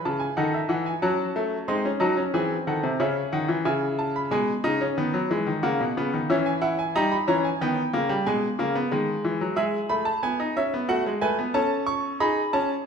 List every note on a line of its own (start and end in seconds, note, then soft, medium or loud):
0.00 0.34 E4 medium
0.00 0.36 B4 medium
0.05 0.26 C#3 medium
0.05 0.21 A5 medium
0.20 0.37 G#5 medium
0.37 0.58 D#3 medium
0.37 1.01 D#4 medium
0.37 1.02 A4 medium
0.37 0.53 F#5 medium
0.54 0.70 E5 medium
0.69 0.90 E3 medium
0.69 0.86 F#5 medium
0.86 1.03 G#5 medium
1.02 1.23 F#3 medium
1.02 1.67 C#4 medium
1.02 1.67 F#4 medium
1.02 1.67 A5 medium
1.36 1.57 A3 medium
1.68 1.89 G#3 medium
1.68 1.85 C4 medium
1.68 1.89 D#4 medium
1.68 1.89 C6 medium
1.85 2.01 C#4 medium
2.00 2.21 F#3 medium
2.00 2.17 D#4 medium
2.00 2.22 F#4 medium
2.00 2.21 A5 medium
2.17 2.34 C#4 medium
2.34 2.54 E3 medium
2.34 2.98 C4 medium
2.34 2.55 G#4 medium
2.34 2.55 G#5 medium
2.67 2.83 D#3 medium
2.67 2.88 A4 medium
2.67 2.88 F#5 medium
2.84 3.00 C3 medium
3.00 3.20 C#3 medium
3.00 3.63 C#4 medium
3.00 4.27 G#4 medium
3.00 3.21 E5 medium
3.32 3.49 D#3 medium
3.32 3.53 F#5 medium
3.48 3.65 E3 medium
3.65 4.29 C#3 medium
3.65 4.29 E4 medium
3.65 3.86 G#5 medium
3.99 4.14 A5 medium
4.16 4.31 B5 medium
4.31 4.51 B2 medium
4.31 4.52 G#3 medium
4.31 5.58 G#5 medium
4.64 4.84 C#3 medium
4.64 4.80 D#4 medium
4.81 4.96 C#4 medium
4.98 5.13 D#3 medium
4.98 5.18 B3 medium
5.14 5.29 F#3 medium
5.31 5.46 E3 medium
5.31 5.51 G#3 medium
5.47 5.62 D#3 medium
5.63 5.79 C#3 medium
5.63 5.83 A#3 medium
5.63 6.26 F#5 medium
5.80 5.95 B2 medium
5.97 6.12 C#3 medium
5.97 6.17 B3 medium
6.13 6.28 D#3 medium
6.30 6.93 E3 medium
6.30 6.50 C#4 medium
6.30 6.45 E5 medium
6.46 6.61 G#5 medium
6.62 6.82 E4 medium
6.62 6.77 F#5 medium
6.79 6.94 G#5 medium
6.95 7.15 G3 medium
6.95 7.16 D#4 loud
6.95 7.11 A#5 medium
7.12 7.27 B5 medium
7.28 7.48 E3 medium
7.28 7.48 C#4 medium
7.28 7.43 A#5 medium
7.44 7.60 G#5 medium
7.61 7.81 D#3 medium
7.61 7.81 B3 medium
7.61 8.24 G5 medium
7.93 8.14 C#3 medium
7.93 8.09 A#3 medium
8.09 8.25 G3 medium
8.26 8.47 B2 medium
8.26 8.47 G#3 medium
8.26 9.54 G#5 medium
8.59 8.79 C#3 medium
8.59 8.75 A#3 medium
8.75 8.91 B3 medium
8.91 9.12 D#3 medium
8.91 9.55 G#3 medium
9.25 9.40 E3 medium
9.41 9.57 F#3 medium
9.56 9.77 G#3 medium
9.56 10.85 G#4 medium
9.56 9.77 E5 medium
9.89 10.10 A3 medium
9.89 10.06 B5 medium
10.05 10.22 A5 medium
10.23 10.39 B3 medium
10.23 10.44 G#5 medium
10.40 10.56 D#4 medium
10.57 10.73 C#4 medium
10.57 10.77 E5 medium
10.74 10.89 B3 medium
10.89 11.05 A3 medium
10.89 11.09 F#4 medium
10.89 11.09 F#5 loud
11.06 11.22 G#3 medium
11.21 11.38 A3 medium
11.21 11.42 B4 medium
11.21 11.42 G#5 loud
11.39 11.54 B3 medium
11.54 12.18 C#4 medium
11.54 12.18 A4 medium
11.54 11.75 A5 loud
11.87 12.07 C#6 loud
12.20 12.41 D#4 medium
12.20 12.84 G#4 medium
12.20 12.41 B5 loud
12.53 12.74 C#4 medium
12.53 12.73 A5 loud